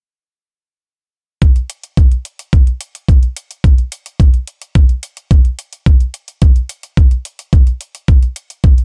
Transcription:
1.42 kick loud
1.42 closed hi-hat soft
1.56 closed hi-hat soft
1.70 closed hi-hat medium
1.83 closed hi-hat soft
1.97 kick loud
1.97 closed hi-hat soft
2.12 closed hi-hat soft
2.25 closed hi-hat medium
2.39 closed hi-hat soft
2.53 kick loud
2.53 closed hi-hat soft
2.67 closed hi-hat soft
2.81 closed hi-hat medium
2.95 closed hi-hat medium
3.09 kick loud
3.09 closed hi-hat soft
3.23 closed hi-hat soft
3.36 closed hi-hat medium
3.51 closed hi-hat soft
3.64 kick loud
3.64 closed hi-hat soft
3.78 closed hi-hat soft
3.92 closed hi-hat medium
4.06 closed hi-hat soft
4.20 kick loud
4.20 closed hi-hat soft
4.34 closed hi-hat soft
4.47 closed hi-hat medium
4.62 closed hi-hat soft
4.75 kick loud
4.75 closed hi-hat soft
4.89 closed hi-hat soft
5.03 closed hi-hat medium
5.17 closed hi-hat soft
5.31 kick loud
5.31 closed hi-hat soft
5.45 closed hi-hat soft
5.59 closed hi-hat medium
5.73 closed hi-hat soft
5.86 kick loud
5.86 closed hi-hat soft
6.00 closed hi-hat soft
6.14 closed hi-hat medium
6.28 closed hi-hat soft
6.42 kick loud
6.42 closed hi-hat soft
6.56 closed hi-hat soft
6.69 closed hi-hat medium
6.83 closed hi-hat soft
6.97 kick loud
6.97 closed hi-hat soft
7.11 closed hi-hat soft
7.25 closed hi-hat medium
7.39 closed hi-hat soft
7.53 kick loud
7.53 closed hi-hat soft
7.67 closed hi-hat soft
7.81 closed hi-hat medium
7.95 closed hi-hat soft
8.08 kick loud
8.08 closed hi-hat soft
8.23 closed hi-hat soft
8.36 closed hi-hat medium
8.50 closed hi-hat soft
8.64 kick loud
8.64 closed hi-hat soft
8.78 closed hi-hat soft

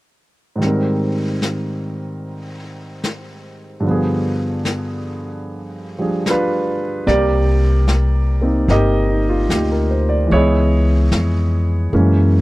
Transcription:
0.56 3.82 G#2 soft
0.56 3.83 D#3 soft
0.61 3.84 G3 soft
0.61 3.86 C4 soft
0.61 brush sweep soft
0.61 snare soft
0.66 3.87 A#4 soft
1.42 snare soft
1.42 hi-hat pedal soft
2.23 brush sweep soft
3.04 snare soft
3.04 hi-hat pedal soft
3.80 7.05 G2 soft
3.80 7.06 D3 soft
3.85 5.97 F3 soft
3.85 7.09 B3 soft
3.85 brush sweep soft
3.91 6.00 G#4 soft
4.65 snare soft
4.65 hi-hat pedal soft
5.45 brush sweep soft
5.99 7.06 F3 soft
5.99 7.05 G3 soft
5.99 6.28 D4 soft
5.99 7.08 G#4 soft
6.26 7.05 D4 soft
6.26 7.05 F4 soft
6.26 snare soft
6.26 hi-hat pedal soft
6.30 7.05 B4 medium
7.07 8.65 C2 medium
7.07 10.30 C3 soft
7.07 10.30 G3 soft
7.07 8.40 A#3 soft
7.07 8.65 G4 medium
7.07 8.65 A#4 medium
7.07 8.74 D5 medium
7.07 brush sweep soft
7.07 snare soft
7.88 snare soft
7.88 hi-hat pedal soft
8.42 10.30 A#3 soft
8.42 10.31 C4 soft
8.42 9.07 D#4 soft
8.68 9.45 G1 medium
8.68 9.49 G4 medium
8.68 9.70 A#4 medium
8.68 10.35 D#5 medium
8.68 brush sweep soft
8.68 snare soft
9.09 9.34 D#4 soft
9.29 9.58 F4 soft
9.49 10.26 D2 medium
9.49 9.89 G4 soft
9.49 snare soft
9.49 hi-hat pedal soft
9.72 10.06 A#4 soft
9.91 10.15 C5 soft
10.09 10.38 D5 medium
10.26 11.90 E3 soft
10.26 11.91 G#3 soft
10.31 11.07 C#2 medium
10.31 11.93 B3 soft
10.31 12.41 E4 medium
10.31 12.41 G#4 medium
10.31 12.41 C#5 medium
10.31 brush sweep soft
10.37 11.95 D#5 soft
11.12 11.88 F2 medium
11.12 snare soft
11.12 hi-hat pedal soft
11.92 12.41 F#2 medium
11.92 12.41 E3 soft
11.92 12.41 G#3 soft
11.92 12.41 A#3 soft
11.92 12.41 C#4 soft
11.92 brush sweep soft

